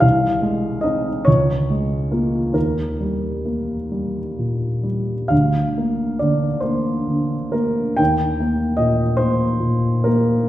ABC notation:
X:1
M:6/8
L:1/8
Q:3/8=46
K:Ebmix
V:1 name="Grand piano"
f2 e d3 | B4- B z | [K:Eb] f2 d c2 B | g2 e c2 B |]
V:2 name="Grand piano" clef=bass
C,, A, [CE] D,, A, [B,F] | E,, G, B, G, B,, G, | [K:Eb] D,, B, D, B, D, B, | E,, B, B,, B, B,, B, |]